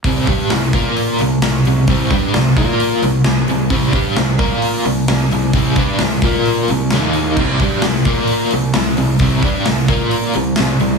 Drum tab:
CC |--------|--------|--------|--------|
HH |oooooooo|oooooooo|oooooooo|oooooooo|
SD |--o---o-|--o---o-|--o---o-|--o---o-|
BD |oo-o----|oo-o----|oo-o----|oo-o----|

CC |x-------|--------|
HH |-ooooooo|oooooooo|
SD |--o---o-|--o---o-|
BD |oo-o----|oo-o----|